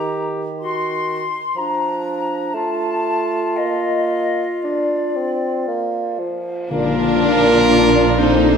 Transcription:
Already playing: bassoon D#3, clarinet G4, flute section A#5
0.60 clarinet F#4, flute section C6
1.56 bassoon F3, clarinet D4, flute section A#5
2.54 bassoon A3, clarinet F4, flute section A5
3.58 bassoon A#3, flute section D#5
4.64 bassoon D4, flute section D5
5.16 bassoon C4
5.68 bassoon A#3
6.19 bassoon F3
6.70 double bass section A#1, cello section A#2, viola section F3 D4, bassoon A#3, french horn section A#3, violin section D4, clarinet F4, flute section F4, trumpet A#4, tam-tam
8.18 french horn section C4, violin section D#4, flute section A4, trumpet C5

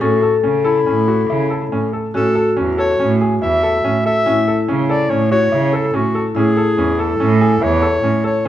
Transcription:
0.01 cello A2, grand piano C#4, clarinet F#4, vibraphone A4
0.22 grand piano A4
0.44 cello C#3, grand piano C#4
0.64 clarinet E4, grand piano A4
0.86 cello A2, grand piano C#4
1.08 grand piano F#4
1.29 cello C#3, grand piano E4
1.50 grand piano A4
1.72 cello A2, grand piano C#4
1.93 grand piano A4
2.14 cello A2, grand piano C#4, vibraphone F#4, clarinet A4
2.35 grand piano A4
2.57 cello E2, grand piano C#4
2.78 grand piano A4, clarinet C#5
3.00 cello A2, grand piano C#4
3.21 grand piano G#4
3.42 cello E2, grand piano E4, clarinet E5
3.63 grand piano A4
3.84 cello A2, grand piano C#4
4.06 grand piano A4, clarinet E5
4.26 cello A2, grand piano C#4, vibraphone E4
4.48 grand piano A4
4.68 cello C#3, grand piano C#4
4.89 grand piano A4, clarinet D5
5.10 cello A2, grand piano C#4, clarinet C#5
5.31 grand piano F#4, clarinet C#5
5.52 cello C#3, grand piano E4
5.73 grand piano A4, clarinet A4
5.94 cello A2, grand piano C#4, clarinet F#4
6.15 grand piano A4
6.35 cello A2, grand piano C#4, vibraphone E4, clarinet G#4
6.57 grand piano A4
6.77 cello E2, grand piano C#4
6.99 grand piano A4, clarinet A4
7.19 cello A2, grand piano C#4
7.41 grand piano G#4
7.62 cello E2, grand piano E4, clarinet C#5
7.82 grand piano A4
8.03 cello A2, grand piano C#4
8.24 grand piano A4, clarinet C#5

